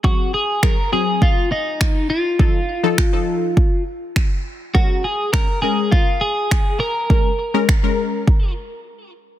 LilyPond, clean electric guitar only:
\new Staff \with { instrumentName = "Clean electric guitar" } { \time 4/4 \key bes \minor \tempo 4 = 102 ges'8 aes'8 bes'8 aes'8 f'8 ees'4 f'8~ | f'2~ f'8 r4. | ges'8 aes'8 bes'8 aes'8 f'8 aes'4 bes'8~ | bes'2~ bes'8 r4. | }